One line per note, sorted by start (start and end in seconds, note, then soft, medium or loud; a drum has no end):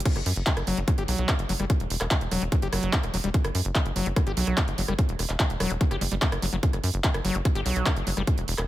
0.00 closed hi-hat medium
0.05 0.08 F#3 loud
0.05 kick loud
0.05 closed hi-hat medium
0.05 crash medium
0.16 0.23 F#1 medium
0.16 cross-stick soft
0.16 closed hi-hat medium
0.26 0.33 F#2 loud
0.26 open hi-hat loud
0.36 0.43 F#1 medium
0.36 closed hi-hat medium
0.47 kick loud
0.47 clap loud
0.47 closed hi-hat medium
0.57 0.64 F#1 medium
0.57 cross-stick medium
0.57 closed hi-hat medium
0.67 0.74 F#1 loud
0.67 0.79 F#3 loud
0.67 open hi-hat medium
0.77 0.84 F#1 medium
0.77 0.80 G3 medium
0.77 closed hi-hat medium
0.88 0.91 F#3 loud
0.88 kick loud
0.88 cross-stick soft
0.88 closed hi-hat medium
0.98 1.05 G1 medium
0.98 1.03 G4 medium
0.98 closed hi-hat medium
1.08 1.15 B1 loud
1.08 1.30 F#3 medium
1.08 open hi-hat loud
1.18 1.25 B1 medium
1.18 closed hi-hat medium
1.29 1.34 F#4 medium
1.29 kick loud
1.29 cross-stick medium
1.29 clap loud
1.29 closed hi-hat medium
1.39 1.46 F#1 medium
1.39 closed hi-hat medium
1.49 1.56 F#1 loud
1.49 1.53 F#3 loud
1.49 open hi-hat loud
1.60 1.66 F#1 medium
1.60 1.65 G3 medium
1.60 cross-stick soft
1.60 closed hi-hat medium
1.70 1.72 F#3 loud
1.70 kick loud
1.70 closed hi-hat medium
1.80 1.87 E1 medium
1.80 closed hi-hat medium
1.90 1.97 E1 loud
1.90 open hi-hat loud
2.01 2.08 E1 medium
2.01 cross-stick medium
2.01 clap soft
2.01 closed hi-hat medium
2.11 kick loud
2.11 clap loud
2.11 closed hi-hat medium
2.21 2.28 E1 medium
2.21 closed hi-hat medium
2.31 2.38 E1 loud
2.31 2.43 F#3 loud
2.31 cross-stick soft
2.31 open hi-hat loud
2.42 2.49 E1 medium
2.42 2.44 G3 medium
2.42 closed hi-hat medium
2.52 2.56 F#3 loud
2.52 kick loud
2.52 closed hi-hat medium
2.62 2.69 F#1 medium
2.62 2.68 G4 medium
2.62 closed hi-hat medium
2.73 2.79 F#1 loud
2.73 2.95 F#3 medium
2.73 cross-stick medium
2.73 open hi-hat loud
2.83 2.90 F#1 medium
2.83 closed hi-hat medium
2.93 2.99 F#4 medium
2.93 kick loud
2.93 clap loud
2.93 closed hi-hat medium
3.03 3.10 E1 medium
3.03 cross-stick soft
3.03 closed hi-hat medium
3.14 3.21 E1 loud
3.14 3.17 F#3 loud
3.14 open hi-hat loud
3.24 3.31 E1 medium
3.24 3.29 G3 medium
3.24 closed hi-hat medium
3.34 3.36 F#3 loud
3.34 kick loud
3.34 closed hi-hat medium
3.44 3.51 F#1 medium
3.44 cross-stick medium
3.44 closed hi-hat medium
3.55 3.62 F#2 loud
3.55 open hi-hat loud
3.65 3.72 F#1 medium
3.65 closed hi-hat medium
3.75 kick loud
3.75 cross-stick soft
3.75 clap loud
3.75 closed hi-hat medium
3.86 3.92 F#1 medium
3.86 closed hi-hat medium
3.96 4.03 F#1 loud
3.96 4.08 F#3 loud
3.96 open hi-hat loud
4.06 4.13 F#1 medium
4.06 4.08 G3 medium
4.06 closed hi-hat medium
4.16 4.20 F#3 loud
4.16 kick loud
4.16 cross-stick medium
4.16 closed hi-hat medium
4.27 4.34 G1 medium
4.27 4.32 G4 medium
4.27 closed hi-hat medium
4.37 4.44 B1 loud
4.37 4.59 F#3 medium
4.37 open hi-hat loud
4.47 4.54 B1 medium
4.47 cross-stick soft
4.47 closed hi-hat soft
4.57 4.63 F#4 medium
4.57 kick loud
4.57 clap loud
4.57 closed hi-hat medium
4.68 4.75 F#1 medium
4.68 closed hi-hat medium
4.78 4.85 F#1 loud
4.78 4.82 F#3 loud
4.78 open hi-hat loud
4.88 4.95 F#1 medium
4.88 4.94 G3 medium
4.88 cross-stick medium
4.88 closed hi-hat medium
4.99 5.01 F#3 loud
4.99 kick loud
4.99 closed hi-hat medium
5.09 5.16 E1 medium
5.09 closed hi-hat medium
5.19 5.26 E1 loud
5.19 cross-stick soft
5.19 open hi-hat loud
5.29 5.36 E1 medium
5.29 clap soft
5.29 closed hi-hat medium
5.40 kick loud
5.40 clap loud
5.40 closed hi-hat medium
5.50 5.57 E1 medium
5.50 closed hi-hat medium
5.60 5.67 E1 loud
5.60 5.72 F#3 loud
5.60 cross-stick medium
5.60 open hi-hat medium
5.70 5.77 E1 loud
5.70 5.73 G3 medium
5.70 closed hi-hat soft
5.81 5.84 F#3 loud
5.81 kick loud
5.81 closed hi-hat medium
5.91 5.98 F#1 medium
5.91 5.97 G4 medium
5.91 cross-stick soft
5.91 closed hi-hat medium
6.01 6.08 F#1 loud
6.01 6.04 G3 loud
6.01 open hi-hat loud
6.12 6.19 F#1 medium
6.12 6.15 G3 medium
6.12 closed hi-hat soft
6.22 6.27 A3 loud
6.22 kick loud
6.22 clap loud
6.22 closed hi-hat medium
6.32 6.39 F#1 medium
6.32 cross-stick medium
6.32 closed hi-hat medium
6.42 6.49 F#1 loud
6.42 6.46 F#3 medium
6.42 open hi-hat loud
6.53 6.60 F#1 medium
6.53 6.56 F#3 medium
6.63 6.65 F#3 loud
6.63 kick loud
6.63 closed hi-hat medium
6.73 6.80 F#1 medium
6.73 cross-stick soft
6.73 closed hi-hat medium
6.84 6.90 F#2 loud
6.84 open hi-hat loud
6.94 7.01 F#1 medium
6.94 closed hi-hat medium
7.04 kick loud
7.04 clap loud
7.04 closed hi-hat medium
7.14 7.21 F#1 medium
7.14 cross-stick medium
7.14 closed hi-hat medium
7.25 7.32 F#1 loud
7.25 7.36 F#3 loud
7.25 open hi-hat medium
7.35 7.42 F#1 medium
7.35 7.37 G3 medium
7.35 closed hi-hat medium
7.45 7.47 F#4 medium
7.45 kick loud
7.45 cross-stick soft
7.45 closed hi-hat medium
7.55 7.62 G1 medium
7.55 7.61 G4 medium
7.55 closed hi-hat medium
7.66 7.73 B1 loud
7.66 7.88 F#3 medium
7.66 open hi-hat loud
7.76 7.83 B1 medium
7.76 closed hi-hat medium
7.86 7.92 F#4 medium
7.86 kick loud
7.86 cross-stick medium
7.86 clap loud
7.86 closed hi-hat medium
7.96 8.03 F#1 medium
7.96 closed hi-hat soft
8.07 8.14 F#1 loud
8.07 8.10 F#3 loud
8.07 open hi-hat medium
8.17 8.24 F#1 medium
8.17 8.23 G3 medium
8.17 cross-stick soft
8.17 closed hi-hat medium
8.27 kick loud
8.27 closed hi-hat medium
8.38 8.45 E1 medium
8.38 closed hi-hat medium
8.48 8.55 E1 loud
8.48 open hi-hat loud
8.58 8.65 E1 medium
8.58 cross-stick medium
8.58 clap soft
8.58 closed hi-hat medium